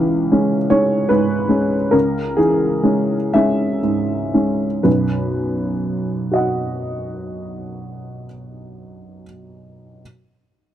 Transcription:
0.00 1.89 C#2 soft
0.00 0.55 E3 soft
0.32 0.67 G#3 soft
0.32 0.67 C#4 soft
0.70 1.06 G#3 soft
0.70 1.07 C#4 soft
0.70 1.10 C#5 medium
1.09 1.76 G#2 soft
1.09 1.92 B4 medium
1.49 1.88 G#3 soft
1.49 1.88 C#4 soft
1.91 4.81 C#2 soft
1.91 2.37 A#4 medium
2.37 3.15 E3 soft
2.37 3.34 G#4 medium
2.83 3.29 G#3 soft
2.83 3.30 C#4 soft
3.34 3.80 G#3 soft
3.34 3.80 C#4 soft
3.34 4.85 E5 medium
3.83 4.65 G#2 soft
4.34 4.81 G#3 soft
4.34 4.81 C#4 soft
4.83 8.27 B1 soft
4.83 8.26 F#2 soft
4.83 8.26 B4 soft
6.31 9.23 F#4 soft
6.31 9.24 D#5 soft
6.35 9.25 F#5 soft

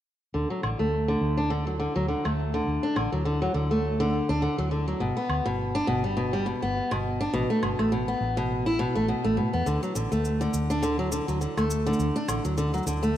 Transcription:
0.34 0.45 D2 medium
0.34 0.49 D3 medium
0.50 0.62 F#3 medium
0.63 0.74 A1 medium
0.63 0.78 D3 medium
0.63 low woodblock medium
0.79 1.14 D2 medium
0.79 1.07 A3 medium
1.08 1.36 D3 medium
1.21 1.86 D2 medium
1.38 1.49 D4 medium
1.50 1.65 D3 medium
1.67 1.79 F#3 medium
1.80 1.94 D3 medium
1.96 2.13 D2 medium
1.96 2.08 F#3 medium
2.08 2.23 D3 medium
2.25 2.60 D2 medium
2.25 2.53 A3 medium
2.25 low woodblock medium
2.54 2.82 D3 medium
2.67 2.78 D2 medium
2.83 2.95 D4 medium
2.96 3.07 A1 medium
2.96 3.11 D3 medium
2.96 low woodblock medium
3.12 3.47 D2 medium
3.12 3.24 F#3 medium
3.25 3.40 D3 medium
3.42 3.53 F#3 medium
3.54 4.20 D2 medium
3.54 3.69 D3 medium
3.71 3.99 A3 medium
4.00 4.28 D3 medium
4.29 4.46 D2 medium
4.29 4.41 D4 medium
4.42 4.57 D3 medium
4.58 4.93 D2 medium
4.58 4.70 F#3 medium
4.71 4.86 D3 medium
4.88 4.99 F#3 medium
5.00 5.11 G1 medium
5.00 5.15 B2 medium
5.17 5.44 B3 medium
5.29 5.40 D2 medium
5.29 low woodblock medium
5.46 5.80 G1 medium
5.46 5.73 B2 medium
5.75 5.86 D4 medium
5.87 6.53 G1 medium
5.87 6.02 B2 medium
6.04 6.16 G3 medium
6.17 6.31 B2 medium
6.33 6.45 G3 medium
6.46 6.61 B2 medium
6.62 6.79 G1 medium
6.62 6.90 B3 medium
6.91 7.26 G1 medium
6.91 7.19 B2 medium
6.91 low woodblock medium
7.21 7.32 D4 medium
7.34 7.44 A1 medium
7.34 7.48 B2 medium
7.50 7.61 A3 medium
7.63 7.73 G1 medium
7.63 7.77 B2 medium
7.63 low woodblock medium
7.79 8.13 A1 medium
7.79 7.91 A3 medium
7.79 low woodblock soft
7.92 8.07 B2 medium
8.08 8.36 B3 medium
8.21 8.86 A1 medium
8.37 8.65 B2 medium
8.66 8.78 E4 medium
8.79 8.94 B2 medium
8.95 9.13 A1 medium
8.95 9.07 A3 medium
9.08 9.23 B2 medium
9.24 9.39 A1 medium
9.24 9.36 A3 medium
9.37 9.48 A2 medium
9.37 9.52 B2 medium
9.53 9.62 E2 medium
9.53 9.66 B3 medium
9.66 9.77 D2 medium
9.66 9.81 D3 medium
9.66 shaker soft
9.83 9.94 F#3 medium
9.83 shaker soft
9.95 10.06 A1 medium
9.95 10.10 D3 medium
9.95 shaker medium
10.12 10.46 D2 medium
10.12 10.39 A3 medium
10.12 shaker soft
10.25 shaker soft
10.41 10.68 D3 medium
10.41 shaker soft
10.54 11.19 D2 medium
10.54 shaker medium
10.70 10.82 D4 medium
10.70 shaker soft
10.83 10.97 D3 medium
10.83 shaker soft
10.99 11.11 F#3 medium
11.12 11.27 D3 medium
11.12 shaker medium
11.28 11.45 D2 medium
11.28 11.40 F#3 medium
11.28 shaker soft
11.41 11.56 D3 medium
11.41 shaker soft
11.57 11.92 D2 medium
11.57 11.85 A3 medium
11.57 low woodblock medium
11.57 shaker soft
11.70 shaker medium
11.87 12.14 D3 medium
11.93 shaker soft
11.99 12.10 D2 medium
11.99 shaker soft
12.16 12.27 D4 loud
12.16 shaker soft
12.28 12.39 A1 medium
12.28 12.43 D3 medium
12.28 low woodblock medium
12.28 shaker medium
12.45 12.79 D2 medium
12.45 12.56 F#3 medium
12.45 shaker soft
12.57 12.72 D3 medium
12.57 shaker soft
12.74 12.85 F#3 medium
12.74 shaker soft
12.77 shaker soft
12.83 13.17 D2 medium
12.83 shaker soft
12.87 13.02 D3 medium
12.87 shaker medium
12.93 shaker soft
12.97 shaker soft
13.03 13.17 A3 medium
13.03 shaker soft

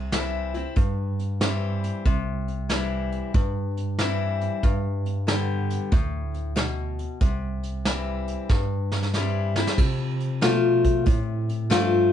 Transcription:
0.00 0.61 C2 medium
0.00 0.73 C3 medium
0.12 0.53 E3 medium
0.12 0.53 G3 medium
0.12 0.54 C4 medium
0.12 0.53 E4 medium
0.12 snare loud
0.12 closed hi-hat medium
0.54 0.77 C4 soft
0.54 0.76 E4 medium
0.54 closed hi-hat medium
0.76 2.01 G2 medium
0.76 1.90 G2 medium
0.76 kick loud
0.76 closed hi-hat medium
1.19 closed hi-hat medium
1.41 2.03 E3 medium
1.41 2.04 G3 medium
1.41 2.04 C4 medium
1.41 2.04 E4 medium
1.41 snare loud
1.41 closed hi-hat medium
1.84 closed hi-hat medium
2.05 3.18 C2 medium
2.05 3.30 C3 medium
2.05 kick loud
2.05 closed hi-hat medium
2.48 closed hi-hat medium
2.69 3.32 E3 medium
2.69 3.32 G3 medium
2.69 3.32 C4 medium
2.69 3.33 E4 medium
2.69 snare loud
2.69 closed hi-hat medium
3.12 closed hi-hat medium
3.34 4.59 G2 medium
3.34 4.47 G2 medium
3.34 kick loud
3.34 closed hi-hat medium
3.77 closed hi-hat medium
3.99 4.61 E3 medium
3.99 4.62 G3 medium
3.99 4.62 C4 medium
3.99 4.62 E4 medium
3.99 snare loud
3.99 closed hi-hat medium
4.41 closed hi-hat medium
4.63 5.76 G2 medium
4.63 5.88 G2 medium
4.63 kick medium
4.63 closed hi-hat medium
5.06 closed hi-hat medium
5.27 5.90 D3 medium
5.27 5.90 G3 medium
5.27 5.90 B3 medium
5.27 5.90 G4 medium
5.27 snare loud
5.27 closed hi-hat medium
5.70 closed hi-hat medium
5.92 7.05 D2 medium
5.92 6.54 A2 medium
5.92 kick loud
5.92 closed hi-hat medium
6.34 closed hi-hat medium
6.56 7.18 B2 medium
6.56 snare loud
6.56 closed hi-hat medium
6.99 closed hi-hat medium
7.21 8.34 C2 medium
7.21 8.45 C3 medium
7.21 kick loud
7.21 closed hi-hat medium
7.63 closed hi-hat medium
7.85 8.48 E3 medium
7.85 8.48 G3 medium
7.85 8.48 C4 medium
7.85 8.48 E4 medium
7.85 snare loud
7.85 closed hi-hat medium
8.28 closed hi-hat medium
8.49 9.62 G2 medium
8.49 9.74 G2 medium
8.49 kick loud
8.49 snare medium
8.92 snare medium
9.03 snare medium
9.14 9.55 E3 medium
9.14 9.55 G3 medium
9.14 9.55 C4 medium
9.14 9.56 E4 medium
9.14 snare medium
9.56 9.78 C4 soft
9.56 9.78 E4 medium
9.56 snare medium
9.67 snare medium
9.78 11.03 F2 medium
9.78 10.41 C3 medium
9.78 kick loud
9.78 crash medium
10.20 closed hi-hat medium
10.41 11.05 B2 medium
10.41 11.04 F3 medium
10.41 11.05 A3 medium
10.41 11.05 F4 medium
10.41 snare loud
10.41 closed hi-hat medium
10.85 kick medium
10.85 closed hi-hat medium
11.06 11.69 A2 medium
11.06 12.12 C3 medium
11.06 kick loud
11.06 closed hi-hat medium
11.49 closed hi-hat medium
11.70 12.12 G2 loud
11.70 12.11 F3 medium
11.70 12.11 A3 medium
11.70 12.12 C4 medium
11.70 12.12 F4 loud
11.70 snare loud
11.70 closed hi-hat medium

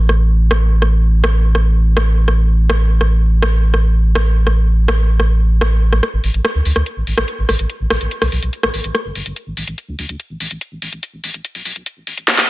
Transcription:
0.00 6.01 A1 medium
0.09 cross-stick soft
0.51 cross-stick medium
0.82 cross-stick soft
1.24 cross-stick medium
1.55 cross-stick soft
1.97 cross-stick medium
2.28 cross-stick soft
2.70 cross-stick medium
3.01 cross-stick soft
3.42 cross-stick medium
3.74 cross-stick soft
4.15 cross-stick medium
4.47 cross-stick soft
4.88 cross-stick medium
5.20 cross-stick soft
5.61 cross-stick medium
5.93 cross-stick soft
6.03 cross-stick soft
6.03 closed hi-hat medium
6.13 6.20 A1 medium
6.24 6.30 A1 loud
6.24 open hi-hat loud
6.34 6.40 A1 medium
6.34 closed hi-hat medium
6.45 cross-stick medium
6.45 closed hi-hat medium
6.55 6.61 D2 medium
6.65 6.72 D2 loud
6.65 open hi-hat loud
6.76 6.82 D2 medium
6.76 cross-stick soft
6.76 closed hi-hat medium
6.86 closed hi-hat medium
6.97 7.03 A1 medium
7.07 7.13 A1 loud
7.07 open hi-hat loud
7.18 7.24 A1 medium
7.18 cross-stick medium
7.18 closed hi-hat medium
7.28 closed hi-hat medium
7.38 7.45 A1 medium
7.49 7.55 A1 loud
7.49 cross-stick soft
7.49 open hi-hat loud
7.59 7.65 A1 medium
7.59 closed hi-hat medium
7.70 closed hi-hat medium
7.80 7.86 A1 medium
7.90 7.97 A1 loud
7.90 cross-stick medium
7.90 open hi-hat loud
8.01 8.07 A1 medium
8.01 closed hi-hat medium
8.11 closed hi-hat medium
8.22 8.28 B1 medium
8.22 cross-stick soft
8.22 open hi-hat medium
8.32 8.38 B1 loud
8.32 open hi-hat loud
8.43 8.49 B1 medium
8.43 closed hi-hat medium
8.53 closed hi-hat medium
8.63 8.70 A1 medium
8.63 cross-stick medium
8.74 8.80 A1 loud
8.74 open hi-hat loud
8.84 8.90 A1 medium
8.84 closed hi-hat medium
8.95 cross-stick soft
8.95 closed hi-hat medium
9.05 9.11 G1 medium
9.15 9.22 G1 loud
9.15 open hi-hat loud
9.26 9.32 G1 medium
9.26 closed hi-hat medium
9.36 closed hi-hat medium
9.47 9.53 A1 medium
9.57 9.63 A1 loud
9.57 open hi-hat loud
9.68 9.74 A1 medium
9.68 closed hi-hat medium
9.78 closed hi-hat medium
9.88 9.95 D2 medium
9.99 10.05 D2 loud
9.99 open hi-hat loud
10.09 10.15 D2 medium
10.09 closed hi-hat medium
10.20 closed hi-hat medium
10.30 10.36 A1 medium
10.40 10.47 A1 loud
10.40 open hi-hat loud
10.51 10.57 A1 medium
10.51 closed hi-hat medium
10.61 closed hi-hat medium
10.72 10.78 A1 medium
10.82 10.88 A1 loud
10.82 open hi-hat loud
10.93 10.99 A1 medium
10.93 closed hi-hat medium
11.03 closed hi-hat medium
11.13 11.20 A1 medium
11.24 11.30 A1 loud
11.24 open hi-hat loud
11.34 11.40 A1 medium
11.34 closed hi-hat medium
11.45 closed hi-hat medium
11.55 11.61 B1 medium
11.55 open hi-hat medium
11.65 11.72 B1 loud
11.65 open hi-hat loud
11.76 11.82 B1 medium
11.76 closed hi-hat medium
11.86 closed hi-hat medium
11.97 12.03 A1 medium
12.07 12.13 A1 loud
12.07 open hi-hat loud
12.18 12.24 A1 medium
12.18 closed hi-hat medium
12.28 snare medium
12.38 snare medium

